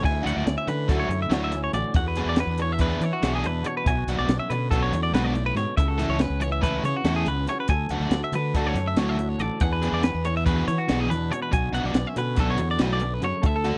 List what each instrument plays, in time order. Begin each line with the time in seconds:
Already playing: clean electric guitar D3
0.02 clean electric guitar D2 E4 G#5, fingered electric bass D2, muted overdriven electric guitar stroke, kick, crash
0.23 fingered electric bass D2, overdriven electric guitar F#3 A3 D4 F#4, clean electric guitar F#5
0.27 closed hi-hat
0.36 fingered electric bass D2, clean electric guitar D5
0.46 fingered electric bass D2, clean electric guitar C#4, muted overdriven electric guitar stroke, snare, closed hi-hat
0.58 clean electric guitar E5
0.66 clean electric guitar D3 B4, fingered electric bass D3, muted overdriven electric guitar stroke, closed hi-hat
0.88 fingered electric bass D2, overdriven electric guitar F#3 A3 D4 F#4, clean electric guitar E4 A4, kick, snare, closed hi-hat
1.00 clean electric guitar C#5
1.09 fingered electric bass F#2, muted overdriven electric guitar stroke, closed hi-hat
1.22 clean electric guitar E5
1.30 fingered electric bass D2, clean electric guitar A2 C#5, overdriven electric guitar F#3 A3 D4 F#4, snare, closed hi-hat
1.44 clean electric guitar E5
1.52 clean electric guitar C#4, muted overdriven electric guitar stroke, snare, closed hi-hat
1.64 clean electric guitar C#5
1.73 fingered electric bass A1, clean electric guitar D2 F#4 D5, muted overdriven electric guitar stroke, closed hi-hat
1.94 clean electric guitar E2 F#4 F#5, fingered electric bass E2, muted overdriven electric guitar stroke, kick, closed hi-hat
2.08 clean electric guitar B4
2.16 overdriven electric guitar E3 B3 D4 G#4, closed hi-hat
2.25 fingered electric bass E2, clean electric guitar D5
2.36 clean electric guitar B3, muted overdriven electric guitar stroke, snare, closed hi-hat
2.40 clean electric guitar B4
2.47 fingered electric bass E2, clean electric guitar D4
2.58 clean electric guitar E3, muted overdriven electric guitar stroke, closed hi-hat
2.62 clean electric guitar C#5
2.72 clean electric guitar E5
2.79 overdriven electric guitar E3 B3 D4 G#4, clean electric guitar E4 B4, kick, closed hi-hat
3.00 fingered electric bass E3, clean electric guitar C#5, muted overdriven electric guitar stroke, closed hi-hat
3.13 clean electric guitar F#4
3.22 fingered electric bass B1, clean electric guitar B2, overdriven electric guitar E3 B3 D4 G#4, snare, closed hi-hat
3.35 clean electric guitar G#4
3.43 fingered electric bass E2, clean electric guitar D4 B4, muted overdriven electric guitar stroke, closed hi-hat
3.62 clean electric guitar E2 F#4, muted overdriven electric guitar stroke, closed hi-hat
3.66 clean electric guitar C#5
3.77 clean electric guitar B4
3.84 fingered electric bass B1, clean electric guitar B2 E4 G#5, muted overdriven electric guitar stroke, kick, closed hi-hat
3.95 clean electric guitar F#4
4.07 fingered electric bass B1, overdriven electric guitar F#3 B3 D4 F#4, clean electric guitar F#5, closed hi-hat
4.19 fingered electric bass B1, clean electric guitar D5
4.28 fingered electric bass B1, clean electric guitar B3, muted overdriven electric guitar stroke, snare, closed hi-hat
4.37 clean electric guitar C#4 E5
4.48 fingered electric bass B2, clean electric guitar D3 B4, muted overdriven electric guitar stroke, closed hi-hat
4.70 fingered electric bass B1, overdriven electric guitar F#3 B3 D4 F#4, clean electric guitar F#4 A4, kick, closed hi-hat
4.82 clean electric guitar C#5
4.92 fingered electric bass E2, muted overdriven electric guitar stroke, closed hi-hat
5.03 clean electric guitar D5
5.10 fingered electric bass B1, clean electric guitar G#2, overdriven electric guitar F#3 B3
5.14 overdriven electric guitar D4 F#4, clean electric guitar B4, snare, closed hi-hat
5.24 clean electric guitar D5
5.34 clean electric guitar A2, muted overdriven electric guitar stroke, closed hi-hat
5.46 clean electric guitar B4
5.55 fingered electric bass G#2, clean electric guitar B2 C#5, muted overdriven electric guitar stroke, snare, closed hi-hat
5.77 fingered electric bass C#2, clean electric guitar C#3 E4 E5, muted overdriven electric guitar stroke, kick, closed hi-hat
5.88 clean electric guitar F#4 A4
5.98 overdriven electric guitar E3 A3 E4 A4, snare, closed hi-hat
6.09 fingered electric bass C#2, clean electric guitar C#5
6.19 clean electric guitar C#4 B4, muted overdriven electric guitar stroke, snare, closed hi-hat
6.30 fingered electric bass C#2
6.40 clean electric guitar E3 C#5, muted overdriven electric guitar stroke, closed hi-hat
6.52 clean electric guitar E5
6.61 overdriven electric guitar E3 A3 E4 A4, clean electric guitar E4 B4, kick, closed hi-hat
6.76 clean electric guitar F#4
6.83 fingered electric bass C#3, clean electric guitar C#5, muted overdriven electric guitar stroke, closed hi-hat
6.96 clean electric guitar F#4
7.04 fingered electric bass E2, clean electric guitar C#3, overdriven electric guitar E3 A3 E4 A4, snare, closed hi-hat
7.16 clean electric guitar G#4
7.26 fingered electric bass C#2, clean electric guitar B3 B4, muted overdriven electric guitar stroke, closed hi-hat
7.37 clean electric guitar C#4
7.47 clean electric guitar C#3 F#4 C#5, muted overdriven electric guitar stroke, snare, closed hi-hat
7.60 clean electric guitar B4
7.68 clean electric guitar D2 A4 G#5, fingered electric bass D2, muted overdriven electric guitar stroke, kick, closed hi-hat
7.89 fingered electric bass D2, overdriven electric guitar F#3 A3 D4 F#4, clean electric guitar F#5, closed hi-hat
8.00 fingered electric bass D2, clean electric guitar D5
8.11 fingered electric bass D2, clean electric guitar F#4, muted overdriven electric guitar stroke, snare, closed hi-hat
8.24 clean electric guitar E5
8.32 fingered electric bass D3, clean electric guitar D3 B4, muted overdriven electric guitar stroke, closed hi-hat
8.54 fingered electric bass D2, overdriven electric guitar F#3 A3 D4 F#4, clean electric guitar A4, kick, closed hi-hat
8.67 clean electric guitar C#5
8.74 fingered electric bass F#2, muted overdriven electric guitar stroke, snare, closed hi-hat
8.88 clean electric guitar E5
8.96 fingered electric bass D2, clean electric guitar A2 C#5, overdriven electric guitar F#3 A3 D4 F#4, snare, closed hi-hat
9.09 clean electric guitar E5
9.17 clean electric guitar F#4, muted overdriven electric guitar stroke, closed hi-hat
9.29 clean electric guitar C#5
9.37 fingered electric bass A1, clean electric guitar D2 A4 D5, muted overdriven electric guitar stroke, closed hi-hat
9.59 clean electric guitar E2 E3 B3 D4 G#4 F#5, fingered electric bass E2, muted overdriven electric guitar stroke, kick, closed hi-hat
9.73 clean electric guitar B4
9.82 overdriven electric guitar E3 B3 D4 G#4, snare, closed hi-hat
9.92 fingered electric bass E2, clean electric guitar D5
10.03 clean electric guitar B3 B4, muted overdriven electric guitar stroke, snare, closed hi-hat
10.14 fingered electric bass E2, clean electric guitar D4
10.25 clean electric guitar E3 C#5, muted overdriven electric guitar stroke, closed hi-hat
10.37 clean electric guitar E5
10.45 overdriven electric guitar E3 B3 D4 G#4, clean electric guitar F#4 B4, kick, closed hi-hat
10.67 fingered electric bass E3, clean electric guitar C#5, muted overdriven electric guitar stroke, closed hi-hat
10.78 clean electric guitar F#4
10.88 fingered electric bass B1, clean electric guitar B2, overdriven electric guitar E3 B3 D4 G#4, snare, closed hi-hat
11.00 clean electric guitar G#4
11.10 fingered electric bass E2, clean electric guitar D4 B4, muted overdriven electric guitar stroke, snare, closed hi-hat
11.30 clean electric guitar E2 F#4 C#5, muted overdriven electric guitar stroke, closed hi-hat
11.42 clean electric guitar B4
11.50 fingered electric bass B1, clean electric guitar B2 F#4 G#5, muted overdriven electric guitar stroke, kick, closed hi-hat
11.73 fingered electric bass B1, overdriven electric guitar F#3 B3 D4 F#4, clean electric guitar F#5, closed hi-hat
11.84 fingered electric bass B1, clean electric guitar D5
11.94 fingered electric bass B1, clean electric guitar B3, muted overdriven electric guitar stroke, snare, closed hi-hat
12.05 clean electric guitar C#4 E5
12.14 fingered electric bass B2, clean electric guitar D3, muted overdriven electric guitar stroke, snare, closed hi-hat
12.18 clean electric guitar B4
12.36 fingered electric bass B1, overdriven electric guitar F#3 B3 D4 F#4, clean electric guitar F#4, kick, snare, closed hi-hat
12.40 clean electric guitar A4
12.50 clean electric guitar C#5
12.58 fingered electric bass E2, muted overdriven electric guitar stroke, closed hi-hat
12.71 clean electric guitar D5
12.78 fingered electric bass B1, clean electric guitar A2 B4, overdriven electric guitar F#3 B3 D4 F#4, snare, closed hi-hat
12.93 clean electric guitar D5
12.99 clean electric guitar B2, muted overdriven electric guitar stroke, closed hi-hat
13.14 clean electric guitar B4
13.21 fingered electric bass F#2, clean electric guitar C#3 C#5, muted overdriven electric guitar stroke, closed hi-hat
13.41 clean electric guitar D2 A4, fingered electric bass D2, muted overdriven electric guitar stroke, kick, closed hi-hat
13.46 clean electric guitar E5
13.56 clean electric guitar A4
13.64 overdriven electric guitar D3 A3 D4 F#4, snare, closed hi-hat